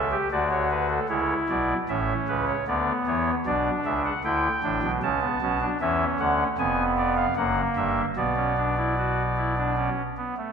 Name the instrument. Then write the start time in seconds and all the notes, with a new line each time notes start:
pipe organ
Already playing: C#2 C#3 E5
0.12 G4
0.31 D2 D3 F#4 D5
0.50 C#5
0.71 B4
0.90 A4
1.09 C#2 C#3 E4 C#5
1.49 B1 B2 D5
1.89 A1 A2 C#4 E5
2.28 C#2 C#3 B4
2.47 C#5
2.68 D2 D3 B3 D5
3.06 E2 E3 C#5
3.46 B1 B2 D4 D5
3.85 C#2 C#3 E5
4.05 F#5
4.24 D2 D3 E4 G5
4.63 A1 A2 D4
4.82 B1 B2
5.03 C#2 C#3 C#4 A5
5.22 B3
5.42 B1 B2 C#4
5.61 D4
5.80 E2 E3 C#4 E5
6.20 D2 D3 F#5
6.58 F1 F2 B3 G#5
6.97 D5
7.16 F5
7.36 F#1 F#2 A#3 F#5
7.76 G1 G2 E5
8.16 B1 B2 B3 D5
8.36 C#4
8.57 D4
8.77 E4
8.98 F#4
9.37 E4
9.57 D4
9.77 C#4
10.18 B3
10.37 A3